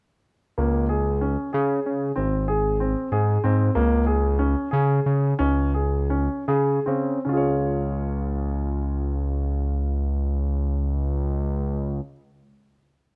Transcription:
0.58 1.37 C#2 medium
0.58 0.85 A#3 medium
0.89 1.17 G#4 medium
1.21 1.49 C#4 medium
1.53 1.80 C#3 medium
1.53 2.08 G#4 medium
1.86 2.12 C#3 medium
2.16 2.95 G#1 medium
2.16 2.44 C4 medium
2.48 2.76 G#4 medium
2.80 3.08 C4 medium
3.12 3.38 G#2 medium
3.12 3.39 G#4 medium
3.44 3.70 G#2 medium
3.44 3.71 C4 medium
3.75 4.55 C#2 loud
3.75 4.03 A#3 medium
4.06 4.35 G#4 medium
4.39 4.67 C#4 medium
4.71 5.00 C#3 medium
4.71 5.29 G#4 medium
5.06 5.34 C#3 medium
5.39 6.29 C#2 medium
5.39 5.69 C#4 medium
5.74 6.06 G#4 medium
6.10 6.43 C#4 medium
6.48 6.80 C#3 medium
6.48 6.81 G#4 medium
6.86 7.19 C#3 medium
6.86 7.20 C4 medium
7.25 12.01 C#2 medium
7.25 11.99 C#4 soft
7.29 12.04 F4 soft
7.29 12.08 G#4 soft
7.37 12.12 C#5 soft

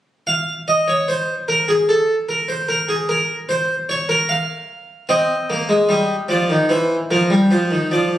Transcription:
0.27 0.52 F5 medium
0.68 0.87 D#5 medium
0.88 1.07 C#5 medium
1.08 1.33 C5 medium
1.48 1.68 A#4 medium
1.68 1.88 G#4 medium
1.89 2.14 A4 medium
2.29 2.48 A#4 medium
2.48 2.68 C5 medium
2.68 2.88 A#4 medium
2.88 3.08 G#4 medium
3.09 3.34 A#4 medium
3.49 3.74 C5 medium
3.89 4.09 C#5 medium
4.09 4.29 A#4 medium
4.29 5.07 F5 medium
5.09 5.34 C4 medium
5.09 5.86 D#5 medium
5.50 5.69 A#3 medium
5.69 5.88 G#3 medium
5.89 6.14 G3 medium
5.89 6.14 D#5 medium
6.29 6.48 F3 medium
6.29 6.54 D5 medium
6.50 6.69 D#3 medium
6.69 6.94 E3 medium
6.69 6.95 C5 medium
7.11 7.30 F3 medium
7.11 7.35 A#4 medium
7.30 7.50 G3 medium
7.51 7.70 F3 medium
7.51 7.75 C5 medium
7.71 7.90 D#3 medium
7.91 8.16 F3 medium
7.91 8.16 D5 medium

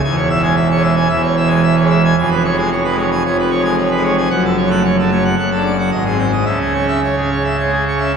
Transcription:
0.04 1.07 E1 loud
0.04 1.07 E2 loud
0.04 0.16 G#5 loud
0.16 0.28 C#5 medium
0.30 0.42 E5 medium
0.39 0.55 G#3 medium
0.43 0.55 G#5 medium
0.56 0.68 E5 loud
0.71 0.91 G#3 medium
0.71 0.82 C#5 medium
0.83 0.95 E5 medium
0.96 1.08 G#5 medium
1.09 2.13 E1 medium
1.09 2.13 E2 loud
1.09 1.21 E5 loud
1.22 1.35 C#5 medium
1.37 1.49 E5 medium
1.44 1.61 G#3 medium
1.49 1.61 G#5 loud
1.63 1.75 E5 loud
1.76 1.88 C#5 medium
1.81 1.97 G#3 medium
1.90 2.02 E5 loud
2.04 2.15 G#5 medium
2.18 3.23 F1 loud
2.18 3.23 F2 loud
2.18 2.30 G#5 loud
2.31 2.42 B4 medium
2.44 2.56 C#5 loud
2.53 2.69 G#3 medium
2.58 2.69 G#5 loud
2.72 2.83 C#5 loud
2.84 2.96 B4 medium
2.89 3.05 G#3 medium
2.98 3.09 C#5 medium
3.11 3.23 G#5 medium
3.25 4.28 F1 medium
3.25 4.28 F2 loud
3.25 3.36 C#5 medium
3.39 3.50 B4 medium
3.50 3.62 C#5 medium
3.59 3.75 G#3 medium
3.64 3.76 G#5 medium
3.78 3.89 C#5 medium
3.91 4.02 B4 medium
3.96 4.11 G#3 medium
4.04 4.16 C#5 medium
4.17 4.29 G#5 medium
4.30 5.34 F#1 loud
4.30 5.34 F#2 loud
4.30 4.42 F#5 loud
4.45 4.56 A4 medium
4.57 4.69 C#5 medium
4.67 4.82 A3 medium
4.67 4.82 F#5 medium
4.84 4.96 C#5 medium
4.99 5.18 A3 medium
4.99 5.10 A4 medium
5.11 5.23 C#5 medium
5.24 5.35 F#5 medium
5.37 5.90 F#1 medium
5.37 5.90 F#2 medium
5.37 5.49 F#5 loud
5.51 5.63 A4 medium
5.55 5.72 D4 medium
5.65 5.77 D5 medium
5.78 5.90 F#5 medium
5.91 6.45 G#1 medium
5.91 6.45 G#2 medium
5.91 6.04 D#5 loud
6.05 6.25 C4 medium
6.05 6.18 G#4 medium
6.18 6.31 C5 medium
6.32 6.44 D#5 medium
6.46 8.17 C#2 medium
6.46 8.17 C#3 medium
6.46 6.59 E5 medium
6.61 6.73 G#4 medium
6.73 6.86 C#5 medium
6.83 7.00 C#4 medium
6.88 7.01 E5 medium
7.03 7.15 C#5 medium
7.17 7.29 G#4 medium
7.21 7.38 C#4 medium
7.31 7.43 C#5 medium
7.44 7.56 E5 medium
7.59 7.75 G#3 medium
7.59 7.71 C#5 medium
7.72 7.84 G#4 medium
7.87 7.99 C#5 medium
7.96 8.12 C#4 medium
8.00 8.12 E5 medium
8.13 8.17 C#5 medium

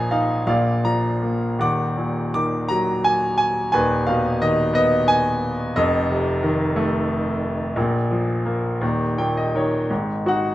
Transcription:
0.00 0.44 A#1 medium
0.00 0.45 A#2 medium
0.00 0.46 F3 medium
0.00 0.44 D#5 medium
0.00 0.50 G#5 medium
0.00 0.50 A#5 medium
0.11 0.47 D#4 medium
0.11 0.45 F5 medium
0.47 1.55 A#1 medium
0.47 1.56 A#2 medium
0.47 1.56 D5 medium
0.47 0.85 F5 medium
0.84 1.57 F3 soft
0.84 1.62 A#5 medium
1.23 1.59 A#3 soft
1.59 3.69 D#1 medium
1.59 3.69 D#2 medium
1.59 2.67 F#5 medium
1.59 2.33 D6 medium
1.97 3.36 A#2 soft
2.34 3.70 D#3 medium
2.34 2.67 D6 medium
2.68 3.71 F#3 medium
2.68 3.02 A#5 medium
3.04 3.36 G#5 medium
3.38 3.70 G#5 medium
3.72 5.72 D#1 medium
3.72 5.72 D#2 medium
3.72 4.71 B4 medium
3.72 4.08 G#5 medium
4.07 5.39 B2 medium
4.07 4.42 F5 medium
4.41 5.72 D#3 medium
4.41 4.73 D#5 medium
4.73 5.72 B3 medium
4.73 5.10 D#5 medium
5.08 5.78 G#5 medium
5.76 7.73 F1 medium
5.76 7.73 F2 medium
5.76 9.16 A4 medium
5.76 9.15 D#5 medium
6.09 7.39 C3 medium
6.43 7.73 D#3 medium
6.76 7.74 A3 medium
7.76 8.79 A#1 medium
7.76 8.79 A#2 medium
8.11 8.81 F3 medium
8.45 8.81 A#3 medium
8.81 9.86 D#1 medium
8.81 9.86 D#2 medium
9.18 9.88 A#2 soft
9.18 9.36 G5 medium
9.37 9.54 D#5 medium
9.55 9.89 D#3 soft
9.55 9.88 C#5 medium
9.90 10.55 G#1 soft
9.90 10.55 G#2 medium
10.26 10.55 D#4 soft
10.26 10.55 F#4 medium
10.26 10.55 F#5 medium

